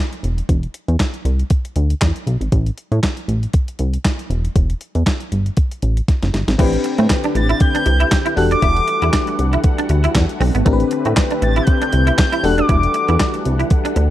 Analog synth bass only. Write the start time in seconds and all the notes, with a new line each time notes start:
0.23 E1
0.49 E1
0.88 E2
1.25 C2
1.76 D2
2.01 E2
2.27 B1
2.41 G#1
2.52 A1
2.92 A2
3.28 A1
3.79 C2
4.30 E1
4.56 E1
4.95 E2
5.32 G1
5.83 A1
6.22 F#1
6.34 G1
6.48 G#1
6.59 A1
6.99 A2
7.35 A1
7.86 C2
8.37 E1
8.62 E1
9.02 E2
9.39 C2
9.90 D2
10.15 E2
10.40 B1
10.55 G#1
10.66 A1
11.05 A2
11.42 A1
11.93 C2
12.44 E1
12.69 E1
13.09 E2
13.46 C2
13.96 D2